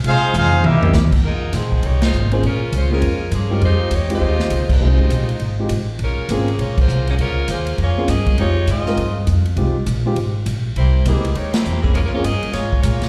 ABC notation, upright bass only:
X:1
M:4/4
L:1/8
Q:"Swing" 1/4=201
K:Fm
V:1 name="Upright bass" clef=bass
C,2 F,,2 C,,2 ^D,,2 | F,,2 B,,,2 C,,2 A,,,2 | B,,,2 D,,2 F,,2 G,,2 | F,,2 =E,,2 _E,,2 D,,2 |
C,,2 B,,,2 A,,,2 =A,,,2 | B,,, z A,,,2 B,,,2 C,,2 | D,,2 E,,2 F,,2 G,, z | F,,2 A,,2 G,,2 F,,2 |
C,, z B,,,2 A,,,2 B,,,2 | C,,2 D,,2 ^D,,2 =E,,2 | F,,2 G,, z A,,2 B,, z |]